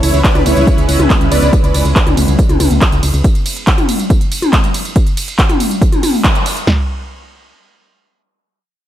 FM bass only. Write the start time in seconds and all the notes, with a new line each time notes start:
0.03 C#2
0.14 C#2
0.35 C#2
0.46 C#2
0.57 C#2
0.78 C#2
0.89 C#2
0.99 C#2
1.21 C#2
1.31 C#2
1.42 C#2
1.64 C#2
1.74 C#2
1.85 C#2
2.06 C#2
2.17 C#2
2.28 C#2
2.49 C#2
2.60 C#2
2.71 C#2
2.92 C#2
3.03 C#2
3.14 C#2